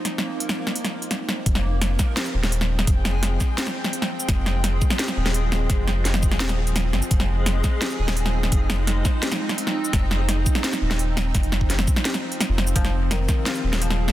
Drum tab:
HH |x-------x-------x-x---x-x-------|x-------x-------x-------x-------|x-------x-------x-------x-------|x-------x-------x-------x-------|
SH |--------------------------------|------------x-----x-------------|------------x---x-------------x-|------------x-----x-------------|
SD |o--o------o---o---o-----o---o---|--o-----o---o---o-----o---o---o-|----o---o---o---o-o---o---o-----|o---o---o-----o-o-o---o-----o---|
BD |--------------------------------|o-----------o-------------------|o-----------o-------------------|o-----------o-------------------|

HH |x-------x-------x-x---x-x-------|x-------x-------x-------x-------|x-------x-------x-------x-------|x-------x-------x-------x-------|
SH |------------x---x-------------x-|------------x-----x-------------|------------x---x-------------x-|------------x-----x-------------|
SD |o---o---o-o---o-o-o-----o---o---|--o-----o---o---o-----o---o---o-|----o---o---o---o-o---o---o-----|o---o---o-----o-o-o---o-----o---|
BD |o-----------o-------------------|o-----------o-------------------|o-----------o-------------------|o-----------o-------------------|

HH |x-x-----x-------x-x---x-x-------|x-------x-------x-------x-------|
SH |------------x---x-------------x-|------------x-----x-------------|
SD |o---o---o-o---o-o-o-----o---o---|--o-----o---o---o-----o---o---o-|
BD |o-----o-----o-------------------|o-----------o-------------------|